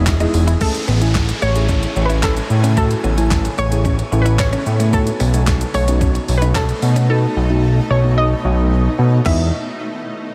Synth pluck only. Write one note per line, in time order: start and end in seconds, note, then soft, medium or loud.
0.00 0.30 E5 medium
0.61 1.45 A4 medium
1.42 2.07 C#5 medium
2.05 2.13 B4 medium
2.24 2.61 A4 medium
2.78 3.61 A4 medium
3.59 4.23 C#5 loud
4.22 4.38 B4 medium
4.40 4.77 C#5 loud
4.94 5.71 A4 loud
5.75 6.39 C#5 loud
6.38 6.46 B4 medium
6.56 6.93 A4 medium
7.10 7.93 A4 loud
7.91 8.16 C#5 loud
8.18 8.95 D#5 loud
9.26 9.51 E5 medium